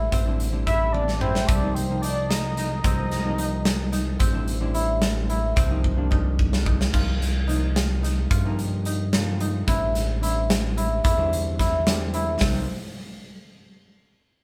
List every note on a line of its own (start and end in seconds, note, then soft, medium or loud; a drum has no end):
0.00 0.16 D3 medium
0.00 0.17 G3 medium
0.00 0.12 C4 medium
0.00 0.17 C4 medium
0.00 0.17 D4 loud
0.00 0.67 E4 medium
0.12 1.45 A1 medium
0.12 1.49 C4 medium
0.12 kick medium
0.12 closed hi-hat medium
0.26 0.51 D3 medium
0.26 0.51 G3 medium
0.26 0.51 C4 medium
0.26 0.51 E4 medium
0.40 closed hi-hat medium
0.52 1.48 D3 medium
0.52 1.49 G3 medium
0.52 1.49 C4 medium
0.52 1.49 E4 medium
0.66 1.21 E4 medium
0.66 0.94 E5 loud
0.66 0.94 B5 loud
0.66 kick medium
0.66 closed hi-hat medium
0.92 1.20 D5 loud
0.92 1.20 A5 loud
0.92 high tom medium
1.08 snare soft
1.21 2.10 E4 medium
1.21 1.49 C5 medium
1.21 1.49 G5 medium
1.21 mid tom medium
1.35 snare medium
1.47 2.81 C2 loud
1.47 2.84 C4 medium
1.47 1.76 D5 loud
1.47 1.76 A5 loud
1.47 kick loud
1.47 closed hi-hat medium
1.61 1.87 C3 medium
1.61 1.87 F3 medium
1.61 1.88 A#3 medium
1.61 1.87 D#4 medium
1.74 2.01 C5 medium
1.74 2.01 G5 medium
1.74 closed hi-hat medium
1.89 2.89 C3 medium
1.89 2.89 F3 medium
1.89 2.90 A#3 medium
1.89 2.90 D#4 medium
2.02 2.57 D#4 medium
2.02 2.31 D5 medium
2.02 2.31 A5 medium
2.02 closed hi-hat medium
2.29 2.83 D#5 medium
2.29 2.83 A#5 medium
2.29 snare medium
2.29 closed hi-hat medium
2.57 3.38 D#4 medium
2.57 snare soft
2.57 closed hi-hat medium
2.84 4.17 C2 medium
2.84 4.19 C4 medium
2.84 3.89 D#5 medium
2.84 3.89 A#5 medium
2.84 kick medium
2.84 closed hi-hat medium
2.97 3.23 C3 medium
2.97 3.23 F3 medium
2.97 3.24 A#3 medium
2.97 3.24 C4 medium
3.11 snare soft
3.11 closed hi-hat medium
3.24 4.21 C3 medium
3.24 4.21 F3 medium
3.24 4.21 A#3 medium
3.24 4.21 D#4 medium
3.38 3.92 D#4 medium
3.38 closed hi-hat medium
3.65 snare loud
3.65 closed hi-hat medium
3.92 4.80 D#4 medium
3.92 snare soft
3.92 closed hi-hat medium
4.19 5.53 A1 loud
4.19 5.56 C4 medium
4.19 kick medium
4.19 closed hi-hat medium
4.33 4.59 D3 medium
4.33 4.59 G3 medium
4.33 4.60 C4 medium
4.33 4.60 E4 medium
4.48 closed hi-hat medium
4.60 5.57 D3 loud
4.60 5.57 G3 medium
4.60 5.57 C4 medium
4.60 5.58 E4 loud
4.74 5.29 E4 medium
4.74 closed hi-hat medium
5.02 snare loud
5.02 closed hi-hat medium
5.29 6.17 E4 medium
5.29 closed hi-hat medium
5.56 6.90 C2 medium
5.56 8.56 C4 medium
5.56 kick loud
5.56 closed hi-hat medium
5.70 5.95 C3 medium
5.70 5.95 F3 medium
5.70 5.96 A#3 medium
5.70 5.96 D#4 medium
5.84 kick medium
5.96 6.91 C3 medium
5.96 6.92 F3 medium
5.96 6.93 A#3 medium
5.96 6.94 D4 loud
6.11 6.65 D#4 medium
6.11 kick medium
6.39 kick medium
6.53 snare medium
6.66 7.47 D#4 medium
6.66 kick medium
6.81 snare medium
6.92 7.20 C2 medium
6.92 7.43 C3 medium
6.92 7.44 F3 medium
6.92 7.44 A#3 medium
6.92 7.44 D#4 medium
6.92 8.30 F4 medium
6.92 kick medium
6.92 crash medium
7.22 8.27 C2 medium
7.22 snare soft
7.22 closed hi-hat medium
7.48 8.36 C3 medium
7.48 8.36 F3 medium
7.48 8.37 A#3 medium
7.48 8.03 D#4 medium
7.48 8.37 D#4 medium
7.48 closed hi-hat soft
7.76 snare loud
7.76 closed hi-hat medium
8.03 8.86 D#4 medium
8.03 snare soft
8.03 closed hi-hat medium
8.30 9.64 G2 medium
8.30 9.74 F4 medium
8.30 kick loud
8.30 closed hi-hat medium
8.45 9.07 C3 medium
8.45 9.08 F3 medium
8.45 9.08 A#3 medium
8.45 9.08 D#4 loud
8.59 closed hi-hat soft
8.85 9.40 D#4 medium
8.85 closed hi-hat medium
9.13 9.63 C3 medium
9.13 9.63 F3 medium
9.13 9.64 A#3 medium
9.13 9.64 F4 loud
9.13 snare loud
9.13 closed hi-hat medium
9.40 9.74 D#4 medium
9.40 closed hi-hat medium
9.67 9.94 A1 medium
9.67 10.17 D3 medium
9.67 10.18 G3 medium
9.67 10.18 C4 medium
9.67 10.22 E4 medium
9.67 10.18 E4 medium
9.67 kick loud
9.67 closed hi-hat medium
9.95 11.01 A1 medium
9.95 snare soft
9.95 closed hi-hat medium
10.21 11.09 D3 medium
10.21 11.10 G3 medium
10.21 11.10 C4 medium
10.21 10.77 E4 medium
10.21 11.10 E4 medium
10.21 closed hi-hat medium
10.50 snare loud
10.50 closed hi-hat medium
10.77 11.04 E4 medium
10.77 closed hi-hat medium
11.04 12.38 E2 medium
11.04 11.52 E4 medium
11.04 kick loud
11.04 closed hi-hat medium
11.18 11.81 D3 medium
11.18 11.81 G3 medium
11.18 11.81 C4 medium
11.18 11.81 E4 loud
11.33 closed hi-hat medium
11.59 12.07 E4 medium
11.59 kick medium
11.59 snare soft
11.59 closed hi-hat medium
11.86 12.37 D3 loud
11.86 12.37 G3 medium
11.86 12.37 C4 medium
11.86 12.37 G4 loud
11.86 snare loud
11.86 closed hi-hat medium
12.14 12.38 E4 medium
12.14 closed hi-hat medium
12.41 12.67 C2 medium
12.41 12.67 C3 medium
12.41 12.67 F3 medium
12.41 12.67 A#3 medium
12.41 12.67 C4 medium
12.41 12.67 D#4 medium
12.41 kick loud
12.41 snare medium
12.41 open hi-hat medium